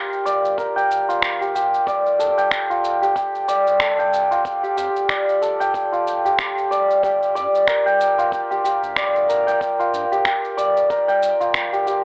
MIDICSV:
0, 0, Header, 1, 5, 480
1, 0, Start_track
1, 0, Key_signature, -2, "minor"
1, 0, Tempo, 645161
1, 1390, Time_signature, 4, 2, 24, 8
1, 8958, End_track
2, 0, Start_track
2, 0, Title_t, "Santur"
2, 0, Program_c, 0, 15
2, 0, Note_on_c, 0, 65, 74
2, 0, Note_on_c, 0, 67, 74
2, 0, Note_on_c, 0, 70, 67
2, 0, Note_on_c, 0, 74, 90
2, 0, Note_on_c, 0, 79, 94
2, 185, Note_off_c, 0, 74, 0
2, 188, Note_on_c, 0, 74, 96
2, 426, Note_off_c, 0, 70, 0
2, 429, Note_on_c, 0, 70, 77
2, 562, Note_off_c, 0, 79, 0
2, 565, Note_on_c, 0, 79, 102
2, 804, Note_off_c, 0, 65, 0
2, 807, Note_on_c, 0, 65, 72
2, 1045, Note_off_c, 0, 67, 0
2, 1048, Note_on_c, 0, 67, 69
2, 1150, Note_off_c, 0, 67, 0
2, 1153, Note_on_c, 0, 67, 69
2, 1386, Note_off_c, 0, 74, 0
2, 1389, Note_on_c, 0, 74, 97
2, 1630, Note_on_c, 0, 69, 69
2, 1674, Note_off_c, 0, 70, 0
2, 1765, Note_off_c, 0, 79, 0
2, 1768, Note_on_c, 0, 79, 95
2, 2005, Note_off_c, 0, 65, 0
2, 2008, Note_on_c, 0, 65, 72
2, 2243, Note_off_c, 0, 67, 0
2, 2246, Note_on_c, 0, 67, 70
2, 2342, Note_off_c, 0, 67, 0
2, 2345, Note_on_c, 0, 67, 75
2, 2587, Note_off_c, 0, 74, 0
2, 2590, Note_on_c, 0, 74, 90
2, 2825, Note_off_c, 0, 69, 0
2, 2828, Note_on_c, 0, 69, 77
2, 2964, Note_off_c, 0, 79, 0
2, 2967, Note_on_c, 0, 79, 96
2, 3204, Note_off_c, 0, 65, 0
2, 3207, Note_on_c, 0, 65, 73
2, 3444, Note_off_c, 0, 67, 0
2, 3447, Note_on_c, 0, 67, 71
2, 3545, Note_off_c, 0, 67, 0
2, 3548, Note_on_c, 0, 67, 69
2, 3783, Note_off_c, 0, 74, 0
2, 3786, Note_on_c, 0, 74, 91
2, 4029, Note_off_c, 0, 69, 0
2, 4032, Note_on_c, 0, 69, 73
2, 4165, Note_off_c, 0, 79, 0
2, 4168, Note_on_c, 0, 79, 93
2, 4404, Note_off_c, 0, 65, 0
2, 4407, Note_on_c, 0, 65, 71
2, 4647, Note_off_c, 0, 67, 0
2, 4650, Note_on_c, 0, 67, 66
2, 4747, Note_off_c, 0, 67, 0
2, 4750, Note_on_c, 0, 67, 79
2, 4988, Note_off_c, 0, 74, 0
2, 4991, Note_on_c, 0, 74, 93
2, 5229, Note_off_c, 0, 67, 0
2, 5232, Note_on_c, 0, 67, 72
2, 5466, Note_off_c, 0, 74, 0
2, 5469, Note_on_c, 0, 74, 95
2, 5708, Note_off_c, 0, 79, 0
2, 5710, Note_on_c, 0, 70, 77
2, 5755, Note_off_c, 0, 69, 0
2, 5847, Note_on_c, 0, 79, 97
2, 6086, Note_off_c, 0, 65, 0
2, 6089, Note_on_c, 0, 65, 75
2, 6325, Note_off_c, 0, 67, 0
2, 6328, Note_on_c, 0, 67, 73
2, 6427, Note_off_c, 0, 67, 0
2, 6430, Note_on_c, 0, 67, 68
2, 6666, Note_off_c, 0, 74, 0
2, 6669, Note_on_c, 0, 74, 97
2, 6906, Note_off_c, 0, 70, 0
2, 6909, Note_on_c, 0, 70, 67
2, 7042, Note_off_c, 0, 79, 0
2, 7045, Note_on_c, 0, 79, 95
2, 7283, Note_off_c, 0, 65, 0
2, 7286, Note_on_c, 0, 65, 70
2, 7524, Note_off_c, 0, 67, 0
2, 7527, Note_on_c, 0, 67, 73
2, 7625, Note_off_c, 0, 67, 0
2, 7628, Note_on_c, 0, 67, 77
2, 7862, Note_off_c, 0, 74, 0
2, 7865, Note_on_c, 0, 74, 94
2, 8104, Note_off_c, 0, 70, 0
2, 8107, Note_on_c, 0, 70, 75
2, 8241, Note_off_c, 0, 79, 0
2, 8244, Note_on_c, 0, 79, 95
2, 8481, Note_off_c, 0, 65, 0
2, 8484, Note_on_c, 0, 65, 69
2, 8722, Note_off_c, 0, 67, 0
2, 8725, Note_on_c, 0, 67, 76
2, 8825, Note_off_c, 0, 67, 0
2, 8828, Note_on_c, 0, 67, 71
2, 8958, Note_off_c, 0, 65, 0
2, 8958, Note_off_c, 0, 67, 0
2, 8958, Note_off_c, 0, 70, 0
2, 8958, Note_off_c, 0, 74, 0
2, 8958, Note_off_c, 0, 79, 0
2, 8958, End_track
3, 0, Start_track
3, 0, Title_t, "Singing bowl"
3, 0, Program_c, 1, 14
3, 0, Note_on_c, 1, 67, 72
3, 8958, Note_off_c, 1, 67, 0
3, 8958, End_track
4, 0, Start_track
4, 0, Title_t, "Sub bass"
4, 0, Program_c, 2, 38
4, 191, Note_on_c, 2, 31, 98
4, 489, Note_off_c, 2, 31, 0
4, 670, Note_on_c, 2, 31, 81
4, 758, Note_off_c, 2, 31, 0
4, 808, Note_on_c, 2, 31, 98
4, 1331, Note_off_c, 2, 31, 0
4, 1391, Note_on_c, 2, 29, 99
4, 1628, Note_on_c, 2, 41, 85
4, 1639, Note_off_c, 2, 29, 0
4, 1717, Note_off_c, 2, 41, 0
4, 1764, Note_on_c, 2, 29, 73
4, 1831, Note_off_c, 2, 29, 0
4, 2111, Note_on_c, 2, 29, 94
4, 2409, Note_off_c, 2, 29, 0
4, 2485, Note_on_c, 2, 29, 86
4, 2552, Note_off_c, 2, 29, 0
4, 2590, Note_on_c, 2, 26, 83
4, 2678, Note_off_c, 2, 26, 0
4, 2729, Note_on_c, 2, 36, 101
4, 3251, Note_off_c, 2, 36, 0
4, 3554, Note_on_c, 2, 41, 87
4, 3640, Note_off_c, 2, 41, 0
4, 3691, Note_on_c, 2, 29, 74
4, 3755, Note_off_c, 2, 29, 0
4, 4034, Note_on_c, 2, 29, 102
4, 4330, Note_off_c, 2, 29, 0
4, 4512, Note_on_c, 2, 29, 83
4, 4599, Note_off_c, 2, 29, 0
4, 4650, Note_on_c, 2, 29, 92
4, 5172, Note_off_c, 2, 29, 0
4, 5233, Note_on_c, 2, 31, 94
4, 5469, Note_on_c, 2, 43, 93
4, 5480, Note_off_c, 2, 31, 0
4, 5557, Note_off_c, 2, 43, 0
4, 5609, Note_on_c, 2, 31, 77
4, 5673, Note_off_c, 2, 31, 0
4, 5954, Note_on_c, 2, 31, 95
4, 6250, Note_off_c, 2, 31, 0
4, 6328, Note_on_c, 2, 31, 89
4, 6393, Note_off_c, 2, 31, 0
4, 6430, Note_on_c, 2, 29, 84
4, 6518, Note_off_c, 2, 29, 0
4, 6567, Note_on_c, 2, 38, 102
4, 7090, Note_off_c, 2, 38, 0
4, 7389, Note_on_c, 2, 43, 87
4, 7478, Note_off_c, 2, 43, 0
4, 7527, Note_on_c, 2, 31, 78
4, 7592, Note_off_c, 2, 31, 0
4, 7870, Note_on_c, 2, 31, 99
4, 8168, Note_off_c, 2, 31, 0
4, 8350, Note_on_c, 2, 31, 85
4, 8438, Note_off_c, 2, 31, 0
4, 8485, Note_on_c, 2, 31, 99
4, 8958, Note_off_c, 2, 31, 0
4, 8958, End_track
5, 0, Start_track
5, 0, Title_t, "Drums"
5, 96, Note_on_c, 9, 82, 20
5, 170, Note_off_c, 9, 82, 0
5, 196, Note_on_c, 9, 82, 72
5, 271, Note_off_c, 9, 82, 0
5, 335, Note_on_c, 9, 82, 34
5, 410, Note_off_c, 9, 82, 0
5, 430, Note_on_c, 9, 36, 98
5, 438, Note_on_c, 9, 82, 39
5, 505, Note_off_c, 9, 36, 0
5, 513, Note_off_c, 9, 82, 0
5, 578, Note_on_c, 9, 82, 22
5, 652, Note_off_c, 9, 82, 0
5, 678, Note_on_c, 9, 82, 70
5, 752, Note_off_c, 9, 82, 0
5, 816, Note_on_c, 9, 82, 31
5, 890, Note_off_c, 9, 82, 0
5, 909, Note_on_c, 9, 36, 104
5, 910, Note_on_c, 9, 26, 101
5, 917, Note_on_c, 9, 82, 45
5, 984, Note_off_c, 9, 36, 0
5, 985, Note_off_c, 9, 26, 0
5, 992, Note_off_c, 9, 82, 0
5, 1056, Note_on_c, 9, 82, 20
5, 1130, Note_off_c, 9, 82, 0
5, 1157, Note_on_c, 9, 82, 69
5, 1232, Note_off_c, 9, 82, 0
5, 1295, Note_on_c, 9, 82, 33
5, 1369, Note_off_c, 9, 82, 0
5, 1390, Note_on_c, 9, 36, 104
5, 1397, Note_on_c, 9, 82, 44
5, 1464, Note_off_c, 9, 36, 0
5, 1472, Note_off_c, 9, 82, 0
5, 1534, Note_on_c, 9, 82, 21
5, 1608, Note_off_c, 9, 82, 0
5, 1637, Note_on_c, 9, 82, 74
5, 1711, Note_off_c, 9, 82, 0
5, 1772, Note_on_c, 9, 82, 31
5, 1847, Note_off_c, 9, 82, 0
5, 1870, Note_on_c, 9, 26, 98
5, 1870, Note_on_c, 9, 36, 101
5, 1877, Note_on_c, 9, 82, 44
5, 1944, Note_off_c, 9, 36, 0
5, 1945, Note_off_c, 9, 26, 0
5, 1952, Note_off_c, 9, 82, 0
5, 2015, Note_on_c, 9, 82, 21
5, 2089, Note_off_c, 9, 82, 0
5, 2116, Note_on_c, 9, 82, 72
5, 2191, Note_off_c, 9, 82, 0
5, 2255, Note_on_c, 9, 82, 34
5, 2329, Note_off_c, 9, 82, 0
5, 2350, Note_on_c, 9, 36, 105
5, 2355, Note_on_c, 9, 82, 40
5, 2425, Note_off_c, 9, 36, 0
5, 2429, Note_off_c, 9, 82, 0
5, 2494, Note_on_c, 9, 82, 22
5, 2568, Note_off_c, 9, 82, 0
5, 2593, Note_on_c, 9, 82, 77
5, 2667, Note_off_c, 9, 82, 0
5, 2732, Note_on_c, 9, 82, 35
5, 2806, Note_off_c, 9, 82, 0
5, 2827, Note_on_c, 9, 26, 101
5, 2830, Note_on_c, 9, 36, 104
5, 2834, Note_on_c, 9, 82, 44
5, 2901, Note_off_c, 9, 26, 0
5, 2905, Note_off_c, 9, 36, 0
5, 2908, Note_off_c, 9, 82, 0
5, 2972, Note_on_c, 9, 82, 21
5, 3046, Note_off_c, 9, 82, 0
5, 3076, Note_on_c, 9, 82, 75
5, 3150, Note_off_c, 9, 82, 0
5, 3213, Note_on_c, 9, 82, 35
5, 3287, Note_off_c, 9, 82, 0
5, 3311, Note_on_c, 9, 36, 108
5, 3314, Note_on_c, 9, 82, 45
5, 3385, Note_off_c, 9, 36, 0
5, 3389, Note_off_c, 9, 82, 0
5, 3453, Note_on_c, 9, 82, 22
5, 3527, Note_off_c, 9, 82, 0
5, 3554, Note_on_c, 9, 82, 78
5, 3628, Note_off_c, 9, 82, 0
5, 3693, Note_on_c, 9, 82, 32
5, 3767, Note_off_c, 9, 82, 0
5, 3790, Note_on_c, 9, 26, 96
5, 3791, Note_on_c, 9, 36, 105
5, 3796, Note_on_c, 9, 82, 41
5, 3864, Note_off_c, 9, 26, 0
5, 3865, Note_off_c, 9, 36, 0
5, 3871, Note_off_c, 9, 82, 0
5, 3936, Note_on_c, 9, 82, 21
5, 4010, Note_off_c, 9, 82, 0
5, 4036, Note_on_c, 9, 82, 73
5, 4111, Note_off_c, 9, 82, 0
5, 4175, Note_on_c, 9, 82, 34
5, 4249, Note_off_c, 9, 82, 0
5, 4272, Note_on_c, 9, 36, 96
5, 4276, Note_on_c, 9, 82, 42
5, 4346, Note_off_c, 9, 36, 0
5, 4351, Note_off_c, 9, 82, 0
5, 4414, Note_on_c, 9, 82, 21
5, 4489, Note_off_c, 9, 82, 0
5, 4518, Note_on_c, 9, 82, 74
5, 4592, Note_off_c, 9, 82, 0
5, 4655, Note_on_c, 9, 82, 34
5, 4730, Note_off_c, 9, 82, 0
5, 4751, Note_on_c, 9, 26, 92
5, 4752, Note_on_c, 9, 36, 104
5, 4758, Note_on_c, 9, 82, 44
5, 4826, Note_off_c, 9, 26, 0
5, 4826, Note_off_c, 9, 36, 0
5, 4833, Note_off_c, 9, 82, 0
5, 4896, Note_on_c, 9, 82, 21
5, 4971, Note_off_c, 9, 82, 0
5, 5000, Note_on_c, 9, 82, 73
5, 5074, Note_off_c, 9, 82, 0
5, 5137, Note_on_c, 9, 82, 32
5, 5211, Note_off_c, 9, 82, 0
5, 5232, Note_on_c, 9, 36, 101
5, 5239, Note_on_c, 9, 82, 42
5, 5306, Note_off_c, 9, 36, 0
5, 5313, Note_off_c, 9, 82, 0
5, 5376, Note_on_c, 9, 82, 19
5, 5450, Note_off_c, 9, 82, 0
5, 5477, Note_on_c, 9, 82, 68
5, 5552, Note_off_c, 9, 82, 0
5, 5617, Note_on_c, 9, 82, 33
5, 5691, Note_off_c, 9, 82, 0
5, 5711, Note_on_c, 9, 26, 86
5, 5712, Note_on_c, 9, 36, 100
5, 5717, Note_on_c, 9, 82, 44
5, 5785, Note_off_c, 9, 26, 0
5, 5786, Note_off_c, 9, 36, 0
5, 5792, Note_off_c, 9, 82, 0
5, 5857, Note_on_c, 9, 82, 20
5, 5931, Note_off_c, 9, 82, 0
5, 5957, Note_on_c, 9, 82, 74
5, 6032, Note_off_c, 9, 82, 0
5, 6095, Note_on_c, 9, 82, 32
5, 6169, Note_off_c, 9, 82, 0
5, 6191, Note_on_c, 9, 36, 98
5, 6198, Note_on_c, 9, 82, 40
5, 6265, Note_off_c, 9, 36, 0
5, 6272, Note_off_c, 9, 82, 0
5, 6336, Note_on_c, 9, 82, 20
5, 6410, Note_off_c, 9, 82, 0
5, 6437, Note_on_c, 9, 82, 67
5, 6511, Note_off_c, 9, 82, 0
5, 6574, Note_on_c, 9, 82, 29
5, 6648, Note_off_c, 9, 82, 0
5, 6670, Note_on_c, 9, 26, 96
5, 6670, Note_on_c, 9, 36, 99
5, 6677, Note_on_c, 9, 82, 42
5, 6744, Note_off_c, 9, 36, 0
5, 6745, Note_off_c, 9, 26, 0
5, 6751, Note_off_c, 9, 82, 0
5, 6814, Note_on_c, 9, 82, 20
5, 6888, Note_off_c, 9, 82, 0
5, 6916, Note_on_c, 9, 82, 70
5, 6990, Note_off_c, 9, 82, 0
5, 7053, Note_on_c, 9, 82, 33
5, 7127, Note_off_c, 9, 82, 0
5, 7149, Note_on_c, 9, 36, 96
5, 7155, Note_on_c, 9, 82, 40
5, 7224, Note_off_c, 9, 36, 0
5, 7230, Note_off_c, 9, 82, 0
5, 7293, Note_on_c, 9, 82, 21
5, 7367, Note_off_c, 9, 82, 0
5, 7394, Note_on_c, 9, 82, 68
5, 7469, Note_off_c, 9, 82, 0
5, 7533, Note_on_c, 9, 82, 31
5, 7607, Note_off_c, 9, 82, 0
5, 7626, Note_on_c, 9, 26, 90
5, 7629, Note_on_c, 9, 36, 98
5, 7633, Note_on_c, 9, 82, 40
5, 7701, Note_off_c, 9, 26, 0
5, 7704, Note_off_c, 9, 36, 0
5, 7707, Note_off_c, 9, 82, 0
5, 7771, Note_on_c, 9, 82, 20
5, 7845, Note_off_c, 9, 82, 0
5, 7872, Note_on_c, 9, 82, 69
5, 7947, Note_off_c, 9, 82, 0
5, 8011, Note_on_c, 9, 82, 32
5, 8086, Note_off_c, 9, 82, 0
5, 8109, Note_on_c, 9, 36, 97
5, 8113, Note_on_c, 9, 82, 41
5, 8183, Note_off_c, 9, 36, 0
5, 8187, Note_off_c, 9, 82, 0
5, 8249, Note_on_c, 9, 82, 20
5, 8323, Note_off_c, 9, 82, 0
5, 8351, Note_on_c, 9, 82, 73
5, 8426, Note_off_c, 9, 82, 0
5, 8489, Note_on_c, 9, 82, 31
5, 8564, Note_off_c, 9, 82, 0
5, 8587, Note_on_c, 9, 26, 86
5, 8589, Note_on_c, 9, 36, 99
5, 8594, Note_on_c, 9, 82, 41
5, 8661, Note_off_c, 9, 26, 0
5, 8664, Note_off_c, 9, 36, 0
5, 8668, Note_off_c, 9, 82, 0
5, 8731, Note_on_c, 9, 82, 20
5, 8805, Note_off_c, 9, 82, 0
5, 8832, Note_on_c, 9, 82, 67
5, 8907, Note_off_c, 9, 82, 0
5, 8958, End_track
0, 0, End_of_file